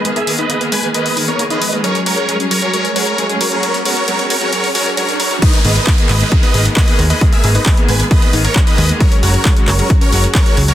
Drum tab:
CC |----------------|----------------|----------------|x---------------|
HH |xxoxxxoxxooxxxox|xxoxxxoxxxoxxxox|xxoxxxoxxooxxxox|xxoxxxoxxxoxxxox|
CP |----------------|----------------|----------------|----x-x-----x---|
BD |----------------|----------------|----------------|o---o---o---o---|

CC |----------------|----------------|
HH |xxoxxxoxxxoxxxox|xxoxxxoxxxoxxxox|
CP |----x-------x---|----x-x-----x---|
BD |o---o---o---o---|o---o---o---o---|